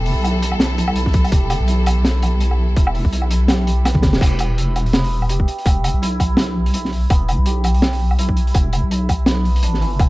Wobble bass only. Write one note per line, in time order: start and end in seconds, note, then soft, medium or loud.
0.00 0.14 E1 loud
0.16 1.31 B1 loud
1.32 1.59 E1 loud
1.60 2.76 B1 loud
2.77 3.03 E1 medium
3.05 4.05 B1 loud
4.03 4.15 G1 loud
4.13 4.21 D1 medium
4.21 5.47 E1 medium
5.66 5.93 E1 loud
5.94 7.09 B1 loud
7.10 7.37 E1 loud
7.38 8.54 B1 loud
8.55 8.82 E1 medium
8.83 9.65 B1 loud
9.63 9.83 A1 loud
9.81 9.98 G1 loud
10.00 10.09 E1 loud